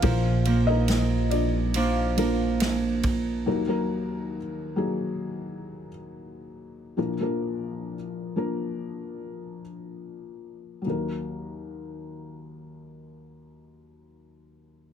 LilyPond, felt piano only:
<<
  \new Staff \with { instrumentName = "Felt piano" } { \time 4/4 \key ees \minor \tempo 4 = 66 << { <d'' f''>8. <ees' bes' ees''>8. <d' f' d''>2 r8 | r1 | r1 | r1 | } \\ { <f bes f' bes'>4~ <f bes f' bes'>16 r4 r16 <f bes d' bes'>4 r8 | <ges bes ees' bes'>16 <ges bes ees' bes'>8. r8 <ges bes ees' aes'>4~ <ges bes ees' aes'>16 r4 r16 | <f bes d' bes'>16 <f bes d' bes'>8. r8 <f bes d' bes'>4~ <f bes d' bes'>16 r4 r16 | <ges bes ees' bes'>1 | } >> }
  \new Staff \with { instrumentName = "Felt piano" } { \clef bass \time 4/4 \key ees \minor <bes,, bes,>1 | <ees, ees>1 | <bes,, bes,>1 | ees,1 | }
>>